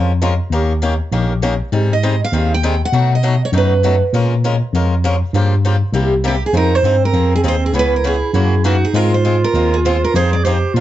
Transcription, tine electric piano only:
0.00 0.39 F2 medium
0.50 0.99 D#2 medium
1.12 1.60 A#1 medium
1.72 2.21 G#2 medium
2.32 2.81 D#2 medium
2.92 3.41 B2 medium
3.52 4.01 F#2 loud
4.13 4.61 A#2 medium
4.73 5.21 F2 medium
5.33 5.81 G2 medium
5.93 6.41 C2 medium
6.53 6.77 F2 medium
6.83 7.09 G2 medium
7.13 7.39 F2 medium
7.44 7.69 D#2 medium
7.73 8.21 C#2 medium
8.34 8.82 F#2 medium
8.94 9.42 G#2 medium
9.54 10.02 D#2 medium
10.14 10.62 F2 medium
10.74 10.80 A#2 medium

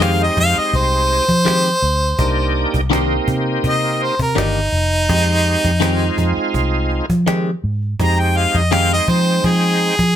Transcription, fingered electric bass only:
0.00 0.28 F2 medium
0.37 0.53 F2 medium
0.58 muted fingered electric bass stroke soft
0.73 1.19 C2 medium
1.28 1.73 F3 medium
1.82 2.12 D2 medium
2.19 2.64 C2 medium
2.74 3.18 C2 medium
3.28 3.58 C3 medium
3.64 4.10 C3 medium
4.19 4.34 C3 medium
4.36 4.69 G1 medium
4.72 5.05 F1 medium
5.09 5.55 F2 loud
5.65 6.09 F2 medium
6.18 6.33 F2 medium
6.37 muted fingered electric bass stroke soft
6.55 7.00 C2 medium
7.10 7.54 F3 medium
7.64 7.93 G#2 medium
7.99 8.45 F2 medium
8.55 8.99 F2 medium
9.08 9.38 F3 medium
9.44 9.90 F3 medium
9.99 10.16 F3 medium

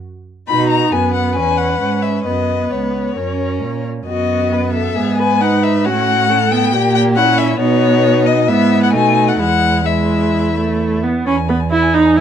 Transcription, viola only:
0.49 0.94 D#4 medium
0.93 1.38 B3 medium
1.37 1.80 C#4 soft
1.80 2.27 C#4 soft
2.26 3.18 B3 soft
3.17 3.87 C#4 soft
4.07 4.92 B3 soft
4.96 5.43 B3 medium
5.41 5.87 D#4 medium
5.85 6.29 C#4 medium
6.30 6.38 C#4 medium
6.51 6.75 B3 medium
6.74 7.18 A#3 medium
7.16 7.60 C#4 medium
7.60 8.44 B3 medium
8.47 8.94 B3 medium
8.92 9.41 A3 medium
9.39 9.85 G#3 medium
9.86 10.53 G#3 medium
10.56 11.05 A3 medium
11.03 11.26 B3 medium
11.27 11.35 C#4 medium
11.49 11.57 B3 medium
11.71 11.96 E4 medium
11.94 12.18 D#4 medium
12.17 12.21 E4 medium

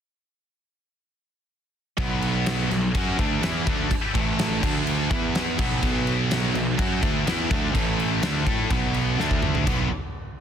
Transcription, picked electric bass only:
1.98 2.66 B1 medium
2.71 2.93 B1 medium
2.95 3.17 F#2 medium
3.19 3.41 D2 medium
3.43 3.65 E2 medium
3.67 3.89 D2 medium
3.91 muted picked electric bass stroke soft
4.15 4.60 A1 loud
4.63 5.08 D2 medium
5.11 5.55 E2 medium
5.59 5.81 B1 medium
5.82 6.51 B1 medium
6.55 6.77 B1 medium
6.79 7.01 F#2 medium
7.02 7.25 D2 medium
7.26 7.49 E2 medium
7.51 7.73 D2 medium
7.75 8.20 A1 loud
8.23 8.45 D2 medium
8.46 8.69 A2 medium
8.71 9.16 B1 medium
9.19 9.64 D2 medium
9.67 9.89 B1 loud

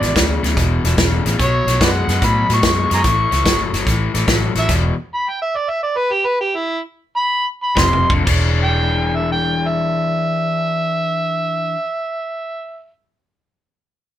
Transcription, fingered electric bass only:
0.01 0.12 G#1 medium
0.16 0.36 D2 medium
0.43 0.53 D2 medium
0.57 0.78 E1 medium
0.84 0.94 E1 medium
0.98 1.19 E1 medium
1.26 1.36 A1 medium
1.39 1.60 B1 medium
1.67 1.77 B1 medium
1.81 2.01 F#2 medium
2.08 2.18 F#2 medium
2.22 2.43 A2 medium
2.49 2.59 A2 medium
2.63 2.84 F#2 medium
2.91 3.01 F#2 medium
3.04 3.25 A1 medium
3.32 3.42 C#2 medium
3.45 3.66 G1 medium
3.73 3.83 G1 medium
3.87 4.07 A1 medium
4.15 4.24 A1 medium
4.28 4.48 A1 medium
4.55 4.65 A1 medium
4.69 4.89 E1 medium
7.76 8.02 F1 medium
8.10 8.22 F1 medium
8.27 11.50 E1 medium

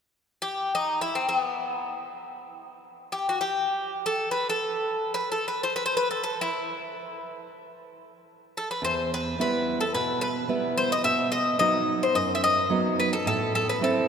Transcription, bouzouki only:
0.42 0.74 G4 medium
0.75 1.01 D#4 medium
1.01 1.15 E4 medium
1.15 1.27 C4 medium
1.29 1.94 B3 medium
3.12 3.27 G4 medium
3.29 3.40 F#4 medium
3.41 4.06 G4 medium
4.06 4.31 A4 medium
4.31 4.49 B4 medium
4.50 5.14 A4 medium
5.14 5.31 B4 medium
5.32 5.47 A4 medium
5.48 5.61 B4 medium
5.63 5.74 C5 medium
5.76 5.85 B4 medium
5.86 5.96 C5 medium
5.97 6.08 B4 medium
6.11 6.22 A4 medium
6.24 6.38 A4 medium
6.41 7.38 E4 medium
8.57 8.70 A4 medium
8.71 8.84 B4 medium
8.85 9.09 C5 medium
9.14 9.38 B4 medium
9.41 9.78 B4 medium
9.81 9.93 A4 medium
9.95 10.20 B4 medium
10.21 10.73 B4 medium
10.78 10.90 C5 medium
10.92 11.04 D#5 medium
11.04 11.30 E5 medium
11.32 11.58 D#5 medium
11.59 11.98 D#5 medium
12.03 12.16 C5 medium
12.15 12.34 D#5 medium
12.35 12.42 E5 medium
12.44 12.94 D#5 medium
13.00 13.13 B4 medium
13.13 13.26 A4 medium
13.27 13.52 A4 medium
13.55 13.67 A4 medium
13.69 13.82 B4 medium
13.84 14.08 A4 medium

